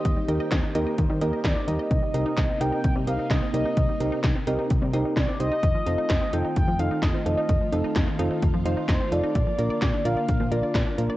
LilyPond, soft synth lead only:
\new Staff \with { instrumentName = "Soft synth lead" } { \time 4/4 \key c \minor \tempo 4 = 129 ees''4 r2 d''8 ees''8~ | ees''4. g''8 g''8 f''8 ees''8 ees''8~ | ees''4 r2 d''8 ees''8~ | ees''4. g''8 g''8 f''8 ees''8 ees''8~ |
ees''4 r2 c''8 d''8~ | d''4. f''4 d''4 r8 | }